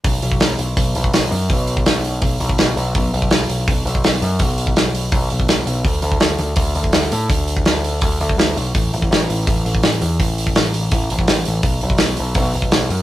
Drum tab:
HH |o-o-o-o-o-o-o-o-|o-o-o-o-o-o-o-o-|o-o-o-o-o-o-o-o-|o-o-o-o-o-o-o-o-|
SD |----o-------o---|----o-------o---|----o-------o---|----o-------o---|
BD |o--o----o--o----|o--o----o--o----|o--o----o--o----|o--o----o--o----|

HH |o-o-o-o-o-o-o-o-|o-o-o-o-o-o-o-o-|o-o-o-o-o-o-o-o-|o-o-o-o-o-o-o-o-|
SD |----o-------o---|----o-------o---|----o-------o---|----o-------o---|
BD |o--o----o--o----|o--o----o--o----|o--o----o--o----|o--o----o--o----|

HH |o-o-o-o-o-o-o-o-|
SD |----o-------o---|
BD |o--o----o--o----|